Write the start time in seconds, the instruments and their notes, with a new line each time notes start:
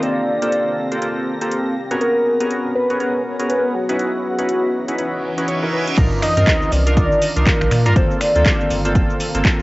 Already playing: ambient pad C4 D5 F5, string machine A#6
0.02 synth keys A#3 C4 F4 G4 A4, soft synth lead D5, closed hi-hat
0.21 ambient pad G4
0.42 synth keys A#3 C4 F4 G4 A4, closed hi-hat
0.52 closed hi-hat
0.92 synth keys A#3 C4 F4 G4 A4, closed hi-hat
1.02 synth keys A#3 C4 F4 G4 A4, closed hi-hat
1.41 synth keys A#3 C4 F4 G4 A4, closed hi-hat
1.51 closed hi-hat
1.76 ambient pad B3
1.91 synth keys B3 C#4 F#4 G#4 A#4, closed hi-hat
1.99 synth keys B3 C#4 F#4 G#4 A#4, ambient pad G#4, soft synth lead A#4, closed hi-hat
2.10 ambient pad C#5
2.40 synth keys B3 C#4 F#4 G#4 A#4, closed hi-hat
2.51 closed hi-hat
2.67 ambient pad F#5
2.75 soft synth lead B4
2.90 synth keys B3 C#4 F#4 G#4 A#4, closed hi-hat
3.00 synth keys B3 C#4 F#4 G#4 A#4, closed hi-hat
3.39 synth keys B3 C#4 F#4 G#4 A#4, closed hi-hat
3.50 soft synth lead B4, closed hi-hat
3.74 ambient pad C#4, soft synth lead F#4
3.89 synth keys C#4 D#4 E4 F#4 B4, closed hi-hat
3.99 synth keys C#4 D#4 E4 F#4 B4, closed hi-hat
4.16 ambient pad E3
4.30 ambient pad B4
4.35 synth keys C#4 D#4 E4 F#4 B4, ambient pad D#5, closed hi-hat
4.49 closed hi-hat
4.88 synth keys C#4 D#4 E4 F#4 B4, closed hi-hat
4.98 synth keys C#4 D#4 E4 F#4 B4, closed hi-hat, reverse cymbal
5.38 synth keys C#4 D#4 E4 F#4 B4, closed hi-hat
5.48 synth keys C#4 D#4 E4 F#4 C#5, closed hi-hat
5.63 synth keys C#4 D#4 E4 F#4 A#4
5.73 synth keys C#4 D#4 E4 F#4 B4
5.88 closed hi-hat
5.97 sub bass C2, ambient pad D#3, synth keys D4 D#4 F4 A#4, kick, closed hi-hat, crash, sub drop, shaker
6.12 shaker
6.22 soft synth lead D#5, finger snap, open hi-hat, shaker
6.37 sub bass G2, synth keys C4 D#4 F4 A#4, closed hi-hat, shaker
6.44 ambient pad D5, kick, clap, closed hi-hat, shaker
6.51 ambient pad F5
6.62 shaker
6.72 sub bass C2, soft synth lead D5, open hi-hat, shaker
6.87 synth keys D4 D#4 F4 A#4, closed hi-hat, shaker
6.97 synth keys D4 D#4 F4 A#4, kick, closed hi-hat, shaker
7.12 shaker
7.22 open hi-hat, shaker
7.36 sub bass C2, synth keys D4 D#4 F4 A#4, closed hi-hat, shaker
7.46 soft synth lead A#4, kick, clap, closed hi-hat, shaker
7.61 sub bass A#1, finger snap, shaker
7.71 sub bass A#2, finger snap, open hi-hat, shaker
7.86 sub bass G2, synth keys D4 D#4 F4 A#4, closed hi-hat, shaker
7.96 sub bass G1, synth keys A#3 C4 F4, ambient pad C4, soft synth lead C5, kick, closed hi-hat, shaker
8.11 shaker
8.21 soft synth lead D5, finger snap, open hi-hat, shaker
8.35 sub bass D2, synth keys A#3 C4 F4 A4, closed hi-hat, shaker
8.46 kick, clap, closed hi-hat, shaker
8.60 shaker
8.70 sub bass G1, open hi-hat, shaker
8.85 synth keys A#3 C4 F4 A4, closed hi-hat, shaker
8.95 synth keys A#3 C4 A4, kick, closed hi-hat, shaker
9.10 shaker
9.20 open hi-hat, shaker
9.35 sub bass G1, synth keys A#3 C4 F4 A4, closed hi-hat, shaker
9.45 kick, clap, closed hi-hat, shaker